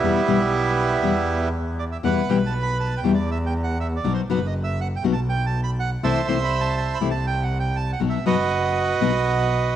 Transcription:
0.00 0.24 E2 medium
0.00 0.20 B2 medium
0.00 0.20 E3 medium
0.00 1.49 G3 medium
0.00 1.49 B3 medium
0.00 1.48 E4 loud
0.04 0.20 G3 medium
0.04 0.20 B3 medium
0.04 0.20 E4 medium
0.27 0.99 B1 medium
0.27 0.36 B2 medium
0.27 0.36 E3 medium
0.27 0.37 G3 medium
0.27 0.37 B3 medium
0.27 0.37 E4 medium
1.02 1.98 E2 medium
1.02 1.11 B2 medium
1.02 1.12 E3 medium
1.02 1.12 G3 medium
1.02 1.12 B3 medium
1.02 1.12 E4 medium
1.79 1.84 D5 medium
1.92 1.97 E5 medium
2.03 2.24 E2 medium
2.03 2.20 B2 medium
2.03 2.20 E3 medium
2.03 2.21 G3 medium
2.03 2.21 B3 medium
2.03 2.21 E4 medium
2.03 3.00 B4 medium
2.03 2.30 F#5 medium
2.29 3.00 B1 medium
2.29 2.38 B2 medium
2.29 2.38 E3 medium
2.29 2.38 G3 medium
2.29 2.38 B3 medium
2.29 2.38 E4 medium
2.29 2.37 G5 medium
2.46 2.54 A5 medium
2.63 2.78 B5 medium
2.80 2.95 A5 medium
2.97 3.12 G5 medium
3.03 3.99 E2 loud
3.03 3.13 B2 medium
3.03 3.13 E3 medium
3.03 3.13 G3 medium
3.03 3.13 B3 medium
3.03 3.13 E4 medium
3.14 3.30 D5 medium
3.31 3.38 E5 medium
3.46 3.54 G5 medium
3.64 3.78 F#5 medium
3.80 3.87 E5 medium
3.96 4.13 D5 medium
4.04 4.25 B1 medium
4.04 4.21 B2 medium
4.04 4.21 F#3 medium
4.04 4.21 B3 medium
4.04 4.21 D#4 medium
4.04 4.21 F#4 medium
4.14 4.21 C5 medium
4.28 5.00 F#1 medium
4.28 4.38 B2 medium
4.28 4.38 F#3 medium
4.28 4.38 B3 medium
4.28 4.38 D#4 medium
4.28 4.39 F#4 medium
4.28 4.47 B4 medium
4.47 4.54 D#5 medium
4.64 4.80 E5 medium
4.81 4.88 F#5 medium
4.96 5.03 G5 medium
5.04 5.98 B1 medium
5.04 5.13 B2 medium
5.04 5.13 F#3 medium
5.04 5.13 B3 medium
5.04 5.13 D#4 medium
5.04 5.13 F#4 medium
5.13 5.20 A5 medium
5.29 5.46 G5 medium
5.46 5.61 A5 medium
5.64 5.71 B5 medium
5.80 5.90 F#5 medium
6.03 6.24 C2 medium
6.03 6.20 C3 medium
6.03 6.20 E3 medium
6.03 6.20 A3 medium
6.03 6.20 C4 medium
6.03 6.20 E4 medium
6.03 6.98 C5 medium
6.03 6.98 E5 medium
6.03 6.26 A5 medium
6.28 6.98 C2 medium
6.28 6.37 C3 medium
6.28 6.37 E3 medium
6.28 6.37 A3 medium
6.28 6.37 C4 medium
6.28 6.37 E4 medium
6.28 6.43 C6 medium
6.44 6.61 B5 medium
6.61 6.76 A5 medium
6.77 6.94 A5 medium
6.94 7.09 B5 medium
7.01 7.96 C2 medium
7.01 7.10 C3 medium
7.01 7.10 E3 medium
7.01 7.10 A3 medium
7.01 7.11 C4 medium
7.01 7.11 E4 medium
7.11 7.26 A5 medium
7.27 7.44 G5 medium
7.43 7.58 F#5 medium
7.60 7.77 G5 medium
7.76 7.91 A5 medium
7.93 8.00 F#5 medium
8.00 8.21 B1 medium
8.00 8.17 B2 medium
8.00 8.17 F#3 medium
8.00 8.18 B3 medium
8.00 8.18 D#4 medium
8.00 8.18 F#4 medium
8.10 8.25 E5 medium
8.25 8.97 F#1 medium
8.25 8.35 B2 medium
8.25 8.35 F#3 medium
8.25 8.35 B3 medium
8.25 8.35 D#4 medium
8.25 9.76 F#4 medium
8.25 8.35 F#4 medium
8.25 9.76 B4 medium
8.25 9.76 D#5 medium
9.00 9.76 B1 medium
9.00 9.10 B2 medium
9.00 9.10 F#3 medium
9.00 9.10 B3 medium
9.00 9.10 D#4 medium
9.00 9.11 F#4 medium

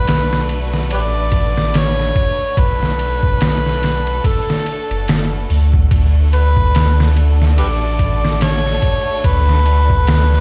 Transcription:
0.00 0.91 B1 medium
0.00 5.87 A3 medium
0.00 5.86 D4 medium
0.00 5.87 F#4 medium
0.00 0.45 B4 loud
0.00 2.54 B4 medium
0.07 snare loud
0.07 ride medium
0.33 snare soft
0.49 ride medium
0.73 snare soft
0.90 2.12 A1 medium
0.90 1.01 G4 medium
0.90 1.01 B4 medium
0.90 1.79 D5 loud
0.90 ride medium
1.32 kick medium
1.32 ride medium
1.57 snare soft
1.74 2.61 C#5 loud
1.74 snare loud
1.74 ride medium
1.99 snare soft
2.15 kick loud
2.15 ride medium
2.57 4.21 B1 loud
2.57 5.87 A4 medium
2.57 4.28 B4 loud
2.57 kick loud
2.57 ride medium
2.83 snare soft
2.99 ride medium
3.23 kick medium
3.41 snare loud
3.41 ride medium
3.66 snare soft
3.83 snare medium
3.83 ride medium
4.07 ride soft
4.24 5.50 A4 medium
4.24 kick loud
4.24 ride medium
4.50 snare medium
4.66 ride medium
4.90 5.46 F#1 medium
4.90 ride soft
5.08 snare loud
5.08 ride medium
5.50 5.87 D2 medium
5.50 open hi-hat medium
5.73 kick loud
5.90 7.59 D2 medium
5.90 10.40 A3 medium
5.90 10.40 D4 medium
5.90 10.40 F#4 medium
5.90 10.40 A4 medium
5.90 kick loud
5.90 ride medium
6.33 7.12 B4 loud
6.33 ride medium
6.57 kick loud
6.75 snare loud
6.75 ride medium
7.00 snare medium
7.16 ride medium
7.42 snare soft
7.58 8.79 A1 medium
7.58 7.66 G4 medium
7.58 7.68 B4 medium
7.58 8.37 D5 loud
7.58 ride medium
7.99 kick medium
7.99 ride medium
8.25 snare soft
8.41 9.27 C#5 loud
8.41 snare loud
8.41 ride medium
8.66 snare soft
8.82 kick medium
8.82 ride medium
9.24 10.40 D2 loud
9.24 10.40 B4 loud
9.24 kick loud
9.24 ride medium
9.49 snare soft
9.66 ride medium
9.90 kick loud
10.07 snare loud
10.07 ride medium
10.32 snare soft

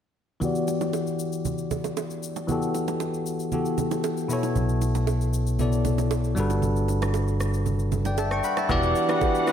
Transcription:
0.40 2.44 E3 medium
0.40 2.45 B3 medium
0.40 2.45 F#4 medium
0.40 2.46 G4 medium
0.40 low conga medium
0.40 shaker medium
0.45 2.46 D5 medium
0.55 shaker soft
0.68 low bongo medium
0.68 shaker medium
0.81 low bongo medium
0.81 shaker soft
0.93 high bongo medium
0.93 shaker medium
1.07 shaker soft
1.19 shaker medium
1.33 shaker medium
1.45 low conga medium
1.45 shaker medium
1.58 shaker medium
1.71 high bongo medium
1.71 low conga medium
1.71 shaker medium
1.84 high bongo soft
1.84 low bongo medium
1.84 shaker soft
1.97 high bongo medium
1.97 shaker medium
2.10 shaker soft
2.23 shaker medium
2.36 low bongo medium
2.36 shaker medium
2.47 3.49 E3 medium
2.47 3.50 B3 medium
2.47 3.51 F#4 medium
2.47 3.51 G4 medium
2.47 low conga medium
2.47 shaker medium
2.52 3.52 A4 medium
2.62 shaker soft
2.75 low bongo medium
2.75 shaker medium
2.88 low bongo medium
2.88 shaker soft
3.00 high bongo medium
3.00 shaker medium
3.14 shaker soft
3.26 shaker medium
3.40 shaker medium
3.52 4.30 E3 medium
3.52 4.28 B3 soft
3.52 4.30 F#4 soft
3.52 4.31 G4 soft
3.52 4.31 A4 medium
3.52 low conga medium
3.52 shaker medium
3.65 shaker medium
3.78 high bongo soft
3.78 low conga medium
3.78 shaker medium
3.91 high bongo soft
3.91 low bongo medium
3.91 shaker soft
4.04 high bongo medium
4.04 shaker medium
4.17 shaker soft
4.28 5.56 B2 medium
4.28 5.56 B3 medium
4.28 5.57 E4 medium
4.28 5.58 A4 medium
4.28 shaker medium
4.33 5.58 C#5 medium
4.43 low bongo medium
4.43 shaker medium
4.56 6.33 B1 medium
4.56 low conga medium
4.56 shaker medium
4.69 shaker soft
4.82 low bongo medium
4.82 shaker medium
4.95 low bongo medium
4.95 shaker medium
5.07 high bongo medium
5.07 shaker medium
5.21 shaker soft
5.33 shaker medium
5.47 shaker medium
5.59 6.37 B2 medium
5.59 6.37 B3 soft
5.59 6.37 E4 soft
5.59 6.37 A4 medium
5.59 6.38 D5 medium
5.59 low conga medium
5.59 shaker medium
5.73 shaker medium
5.85 high bongo soft
5.85 low conga medium
5.85 shaker medium
5.98 high bongo soft
5.98 low bongo medium
5.98 shaker medium
6.11 high bongo medium
6.11 shaker medium
6.24 shaker soft
6.35 8.40 G1 medium
6.35 7.88 G3 medium
6.35 7.89 D4 medium
6.35 7.89 F#4 medium
6.35 7.90 A4 medium
6.35 shaker medium
6.40 7.90 B4 medium
6.50 low bongo medium
6.50 shaker medium
6.62 low conga medium
6.62 shaker medium
6.76 shaker soft
6.88 low bongo medium
6.88 shaker medium
7.02 cross-stick medium
7.02 low bongo medium
7.02 shaker soft
7.14 high bongo medium
7.14 shaker medium
7.28 shaker soft
7.40 cross-stick medium
7.40 shaker medium
7.54 shaker medium
7.66 low conga medium
7.66 shaker medium
7.79 shaker soft
7.92 high bongo soft
7.92 low conga medium
7.92 shaker medium
8.05 8.18 D5 medium
8.05 8.18 G5 medium
8.05 high bongo soft
8.05 low bongo medium
8.05 shaker medium
8.18 8.31 E5 medium
8.18 8.31 A5 medium
8.18 high bongo medium
8.18 shaker medium
8.31 8.44 G5 medium
8.31 8.43 C#6 medium
8.31 cross-stick medium
8.31 shaker soft
8.44 8.57 F#5 medium
8.44 8.57 B5 medium
8.44 shaker medium
8.57 8.82 E5 medium
8.57 8.82 A5 medium
8.57 cross-stick medium
8.57 low bongo medium
8.57 shaker medium
8.69 8.92 E1 loud
8.69 9.01 E3 loud
8.69 9.52 E3 medium
8.69 9.52 G3 medium
8.69 9.01 B3 loud
8.69 9.52 D4 medium
8.69 9.01 F#4 medium
8.69 9.01 G4 loud
8.69 9.02 D5 loud
8.69 9.52 F#5 medium
8.69 kick loud
8.69 low conga medium
8.69 shaker medium
8.83 shaker soft
8.96 shaker medium
9.08 9.39 E3 medium
9.08 9.40 B3 medium
9.08 9.40 F#4 medium
9.08 9.40 G4 medium
9.08 9.41 B4 medium
9.08 cross-stick loud
9.08 low bongo medium
9.08 shaker medium
9.21 kick loud
9.21 high bongo medium
9.21 shaker medium
9.35 shaker soft
9.47 9.52 E3 medium
9.47 9.52 B3 medium
9.47 9.52 F#4 medium
9.47 9.52 G4 medium
9.47 9.52 B4 medium
9.47 cross-stick medium
9.47 shaker medium

